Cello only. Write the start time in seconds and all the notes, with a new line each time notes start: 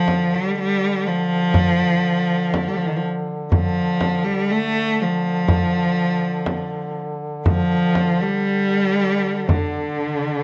Already playing: F3
0.35 G3
0.60 G3
1.08 F3
2.68 G3
2.77 F3
2.87 D#3
2.97 F3
3.53 F3
4.24 G3
4.52 A3
5.02 F3
7.47 F3
8.22 G3
9.50 D3